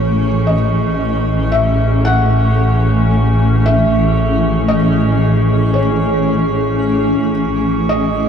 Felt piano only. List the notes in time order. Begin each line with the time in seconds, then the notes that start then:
Already playing: C#5
0.47 D#5
1.52 E5
2.05 F#5
3.66 E5
4.68 D#5
5.74 C#5
7.89 D#5